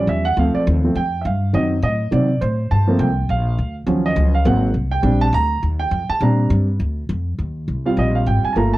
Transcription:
Already playing: grand piano F3 G3 C#4
0.07 upright bass E2, grand piano E5
0.25 grand piano F#5
0.37 upright bass D2, grand piano F3 A3 C4 F5
0.55 grand piano D5, muted upright bass stroke
0.67 upright bass D#2
0.84 grand piano F3 A3 C4
0.95 upright bass F2, grand piano G5
1.21 upright bass G2, grand piano E5
1.26 grand piano F5
1.53 upright bass F#2, grand piano D#3 F#3 C4 D#5
1.82 upright bass A2, grand piano D#5
2.11 upright bass C3, grand piano D#3 F#3 C4 D5
2.41 upright bass A2, grand piano C5
2.71 upright bass G2, grand piano A5
2.87 grand piano F3 A3 A#3 C4
2.99 upright bass C2, grand piano G5
3.29 upright bass A#1, grand piano F5
3.58 upright bass D2
3.86 upright bass D#2, grand piano F3 F#3 C#4
4.06 grand piano D#5
4.16 upright bass C#2
4.35 grand piano F5
4.45 upright bass G#1, grand piano F#3 A#3 C4 F#5
4.74 upright bass C2
4.91 grand piano G5
5.02 upright bass A#1, grand piano G3 C4 D4
5.21 grand piano A5
5.33 upright bass D2, grand piano A#5
5.63 upright bass D#2
5.79 grand piano G5
5.91 upright bass F2
6.09 grand piano A5, muted upright bass stroke
6.21 upright bass A#2, grand piano G3 C4 D4 A#5
6.50 upright bass G2
6.80 upright bass D2
7.09 upright bass F2
7.39 upright bass D#2
7.68 upright bass C2
7.85 grand piano G3 C4 F4 F5
7.97 upright bass A#1, grand piano D#5
8.15 grand piano F5
8.26 upright bass G#1, grand piano G5
8.44 grand piano G#5, muted upright bass stroke
8.53 upright bass G1, grand piano A3 A#3 A5
8.57 grand piano F4 A#5
8.73 grand piano A5

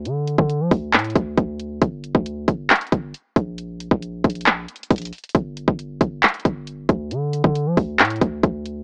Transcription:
0.05 808-style bass D3, closed hi-hat
0.27 closed hi-hat
0.38 808-style bass D3, kick
0.50 closed hi-hat
0.60 808-style bass F3
0.71 808-style bass D2, kick, open hi-hat
0.94 808-style bass A2, clap, closed hi-hat
0.99 closed hi-hat
1.05 closed hi-hat
1.10 closed hi-hat
1.16 808-style bass D2, kick, closed hi-hat
1.38 808-style bass D2, kick, closed hi-hat
1.60 closed hi-hat
1.82 808-style bass G1, kick, closed hi-hat
2.04 closed hi-hat
2.15 808-style bass D2, kick
2.26 closed hi-hat
2.48 808-style bass G1, kick, closed hi-hat
2.70 clap, closed hi-hat
2.75 closed hi-hat
2.81 closed hi-hat
2.87 closed hi-hat
2.92 808-style bass G1, kick, closed hi-hat
3.14 closed hi-hat
3.36 808-style bass A#1, kick, closed hi-hat
3.58 closed hi-hat
3.80 closed hi-hat
3.91 808-style bass A#1, kick
4.02 closed hi-hat
4.24 808-style bass A#1, kick, closed hi-hat
4.30 closed hi-hat
4.35 closed hi-hat
4.41 closed hi-hat
4.46 clap, closed hi-hat
4.68 closed hi-hat
4.76 closed hi-hat
4.83 closed hi-hat
4.90 808-style bass A#1, kick, closed hi-hat
4.96 closed hi-hat
4.98 closed hi-hat
5.02 closed hi-hat
5.05 closed hi-hat
5.07 closed hi-hat
5.13 closed hi-hat, open hi-hat
5.18 closed hi-hat
5.24 closed hi-hat
5.29 closed hi-hat
5.35 808-style bass G1, kick, closed hi-hat
5.57 closed hi-hat
5.68 808-style bass G1, kick
5.79 closed hi-hat
6.01 808-style bass G1, kick, closed hi-hat
6.23 clap, closed hi-hat
6.28 closed hi-hat
6.34 closed hi-hat
6.40 closed hi-hat
6.45 808-style bass G1, kick, closed hi-hat
6.67 closed hi-hat
6.89 808-style bass D2, kick, closed hi-hat
7.11 808-style bass D3, closed hi-hat
7.33 closed hi-hat
7.44 808-style bass D3, kick
7.55 closed hi-hat
7.66 808-style bass F3
7.77 808-style bass D2, kick, open hi-hat
7.99 808-style bass A2, clap, closed hi-hat
8.05 closed hi-hat
8.10 closed hi-hat
8.16 closed hi-hat
8.21 808-style bass D2, kick, closed hi-hat
8.43 808-style bass D2, kick, closed hi-hat
8.66 closed hi-hat

